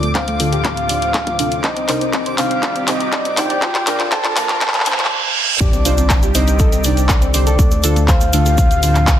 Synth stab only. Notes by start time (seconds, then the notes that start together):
0.40 D3 D4 F4 A4
0.89 D3 D4 F4 C5
1.39 C3 D4 F4 A4
1.89 C3 D4 D#4 C5
2.38 C3 D4 D#4 C5
2.88 C3 C4 D#4 D#5
3.37 A#2 D4 D#4 C5
3.87 A#2 D4 F4 A#4
4.37 A#2 D4 F4 A#4
4.86 A#2 D4 F4 C5
5.85 C3 D4 D#4 C5
6.35 C3 D4 D#4 C5
6.84 C3 D4 D#4 D5
7.34 D3 D4 D#4 C5
7.84 D3 D4 F4 A4
8.33 D3 D4 F4 A4
8.83 D3 D4 F4 C5